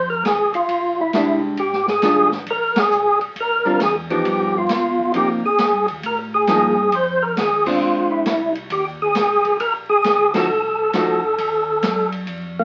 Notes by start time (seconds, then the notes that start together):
Already playing: F2
0.10 A#4
0.24 D#2 G#4, kick, snare, hi-hat pedal, ride
0.53 D#2 F4, ride
0.68 A#1, kick, ride
1.01 E4
1.13 C2 G#3 D4 G4, kick, snare, hi-hat pedal, ride
1.57 G1 G4, kick, ride
1.73 snare
1.87 G#4, snare
2.02 A1 D#3 G3 D4 F4, kick, snare, hi-hat pedal, ride
2.32 snare
2.46 A#1, kick, ride
2.50 A#4
2.75 A#1 G#4, snare, ride
2.91 C2, hi-hat pedal
3.20 C2, ride
3.36 D2, kick, ride
3.40 A#4
3.65 D3 G3 C4 F4
3.80 E2 G#4, kick, snare, hi-hat pedal, ride
4.10 F3 B3 D#4 G4, ride
4.25 G2, kick, ride
4.58 F4
4.69 B2, kick, snare, hi-hat pedal, ride
4.99 kick
5.14 C3 F3 A#3 D#4 G4, kick, ride
5.42 C3 G#4
5.58 A#2, kick, snare, hi-hat pedal, ride
5.72 G2
5.87 D#2, kick, ride
6.03 A2 A#4, kick, ride
6.34 G#4
6.47 G2 F3 A#3 D#4, kick, snare, hi-hat pedal, ride
6.92 F2 C5, kick, ride
7.22 A#4
7.36 D#2 G#4, kick, snare, hi-hat pedal, ride
7.66 G#3 C4 D4 F4, kick, crash
7.80 A#1
8.11 E4
8.26 C2, kick, snare, hi-hat pedal, ride
8.55 ride
8.70 D#2 G4, kick, ride
9.02 G#4
9.15 C2, kick, snare, hi-hat pedal, ride
9.45 kick, ride
9.60 A#1 A#4, kick, ride
9.89 G#4
10.04 D2, kick, snare, hi-hat pedal, ride
10.34 F3 A3 D#4 F#4 A4, snare, ride
10.48 C2
10.93 D2 F3 A3 D#4 F#4, kick, snare, hi-hat pedal, ride
11.08 C2
11.23 A1
11.38 D#2, kick, ride
11.82 F#2, kick, snare, hi-hat pedal, ride
12.12 ride
12.27 F2, kick, ride
12.59 A#3